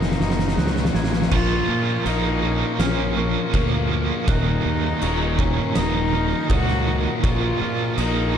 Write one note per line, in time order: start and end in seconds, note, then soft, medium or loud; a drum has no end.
0.00 0.17 F#1 medium
0.00 0.21 D#2 medium
0.00 0.11 D#2 medium
0.00 0.95 D#3 medium
0.00 0.57 F#3 medium
0.00 0.94 A#3 medium
0.00 0.96 D#4 loud
0.00 1.29 A#4 medium
0.00 1.29 D#5 medium
0.00 1.29 F#5 medium
0.00 1.29 C#6 medium
0.00 0.58 D#6 medium
0.00 snare loud
0.07 0.14 A#2 medium
0.11 0.18 D#2 medium
0.11 0.21 A#2 medium
0.11 snare loud
0.18 0.54 F#1 medium
0.18 0.25 D#2 medium
0.18 0.28 A#2 medium
0.18 1.32 D#4 medium
0.18 snare loud
0.25 0.33 D#2 medium
0.25 0.36 A#2 medium
0.30 0.41 D#2 medium
0.30 snare loud
0.37 0.45 A#2 medium
0.37 snare loud
0.41 0.48 D#2 medium
0.46 0.56 D#2 medium
0.46 0.53 A#2 medium
0.46 snare loud
0.53 0.91 C#2 loud
0.53 0.63 D#2 medium
0.53 0.60 A#2 medium
0.58 0.68 A#2 medium
0.58 1.32 F#3 medium
0.58 0.95 F#6 medium
0.58 snare loud
0.63 0.71 D#2 medium
0.63 snare loud
0.69 0.80 D#2 medium
0.69 0.75 A#2 medium
0.76 0.83 A#2 medium
0.76 snare loud
0.80 0.86 D#2 medium
0.80 0.91 A#2 medium
0.85 0.94 D#2 medium
0.85 snare loud
0.92 1.28 A1 loud
0.92 1.01 D#2 medium
0.92 0.99 A#2 medium
0.92 1.33 A#3 medium
0.92 1.32 G#6 medium
0.92 snare loud
0.99 1.09 D#2 medium
0.99 1.07 A#2 medium
1.04 1.14 A#2 medium
1.04 snare loud
1.09 1.17 D#2 medium
1.09 snare loud
1.14 1.24 D#2 medium
1.14 1.22 A#2 medium
1.22 1.32 D#2 medium
1.22 1.30 A#2 medium
1.22 snare loud
1.31 1.60 A#1 medium
1.31 1.67 A#2 loud
1.31 3.17 A#2 medium
1.31 1.68 F3 loud
1.31 1.69 A#3 loud
1.31 2.08 F4 loud
1.31 8.38 A#4 medium
1.31 4.26 C#5 medium
1.31 4.26 F5 medium
1.31 1.69 C#6 medium
1.31 4.26 C#6 medium
1.31 kick loud
1.31 crash loud
1.31 crash medium
1.68 2.04 A#2 medium
1.68 1.97 A#2 medium
1.68 2.04 F3 medium
1.68 2.06 A#3 medium
1.68 2.06 F6 medium
2.05 2.62 A#1 loud
2.05 2.41 A#2 medium
2.05 2.42 F3 medium
2.05 2.43 A#3 loud
2.05 2.80 D#4 loud
2.05 2.79 F4 medium
2.05 2.43 D#6 medium
2.05 crash medium
2.43 2.78 A#2 medium
2.43 2.79 F3 medium
2.43 2.80 A#3 loud
2.43 3.17 C#4 medium
2.43 2.80 C#6 medium
2.79 3.35 A#1 loud
2.79 3.16 A#2 loud
2.79 3.16 F3 loud
2.79 3.17 A#3 loud
2.79 3.19 C#4 loud
2.79 4.29 F4 medium
2.79 3.17 F6 loud
2.79 snare loud
2.79 crash medium
3.17 3.52 A#2 medium
3.17 3.52 F3 medium
3.17 3.91 A#3 medium
3.17 3.54 A#3 medium
3.17 4.29 C#4 medium
3.17 3.91 C#6 medium
3.53 4.10 D2 medium
3.53 3.89 A#2 medium
3.53 3.90 F3 loud
3.53 5.39 A#3 medium
3.53 3.91 A#3 medium
3.53 kick loud
3.53 crash medium
3.91 4.26 A#2 medium
3.91 4.28 F3 medium
3.91 4.26 F3 loud
3.91 7.24 A#3 medium
3.91 4.29 F6 medium
4.27 4.56 D#1 medium
4.27 4.64 D#2 loud
4.27 6.13 D#2 medium
4.27 4.64 A#2 loud
4.27 4.64 D#3 loud
4.27 5.42 D#4 loud
4.27 7.22 F#4 medium
4.27 7.22 D#5 medium
4.27 8.38 A#5 medium
4.27 5.02 F#6 medium
4.27 kick loud
4.27 crash medium
4.65 5.01 D#2 loud
4.65 4.93 D#2 loud
4.65 5.01 A#2 loud
4.65 5.02 D#3 medium
5.02 5.58 D#1 medium
5.02 5.37 D#2 medium
5.02 5.38 A#2 medium
5.02 5.38 D#3 medium
5.02 5.74 D#4 medium
5.02 5.76 C#6 medium
5.02 crash medium
5.38 5.74 D#2 medium
5.38 5.75 A#2 medium
5.38 5.75 D#3 loud
5.38 6.12 A#3 medium
5.38 5.79 C#4 loud
5.38 kick medium
5.75 6.32 D#1 medium
5.75 6.12 D#2 medium
5.75 6.12 A#2 loud
5.75 6.12 D#3 loud
5.75 7.24 D#4 medium
5.75 6.53 D#4 loud
5.75 6.13 D#6 loud
5.75 snare loud
5.75 crash medium
6.12 6.48 D#2 medium
6.12 6.49 A#2 loud
6.12 6.49 D#3 medium
6.12 8.36 A#3 medium
6.12 6.50 F6 medium
6.49 7.06 C#2 loud
6.49 6.86 D#2 loud
6.49 6.86 A#2 medium
6.49 6.86 D#3 medium
6.49 7.25 F#3 medium
6.49 7.07 F#4 loud
6.49 7.24 D#6 medium
6.49 kick loud
6.49 crash medium
6.68 snare soft
6.87 7.22 D#2 medium
6.87 7.22 A#2 medium
6.87 7.24 D#3 medium
6.87 7.22 D#3 medium
7.23 7.52 A#1 loud
7.23 7.59 A#2 loud
7.23 8.38 A#2 medium
7.23 7.59 F3 loud
7.23 7.60 A#3 loud
7.23 8.38 F4 medium
7.23 7.95 F4 loud
7.23 8.38 C#5 medium
7.23 7.61 C#6 loud
7.23 kick loud
7.23 crash medium
7.60 7.96 A#2 medium
7.60 7.89 A#2 medium
7.60 7.96 F3 loud
7.60 7.97 A#3 loud
7.60 7.98 F6 medium
7.97 8.38 A#1 loud
7.97 8.33 A#2 medium
7.97 8.33 F3 medium
7.97 8.34 A#3 loud
7.97 8.38 D#4 loud
7.97 8.38 F4 medium
7.97 8.35 D#6 medium
7.97 crash medium
8.34 8.38 A#2 medium
8.34 8.38 F3 medium
8.34 8.38 A#3 medium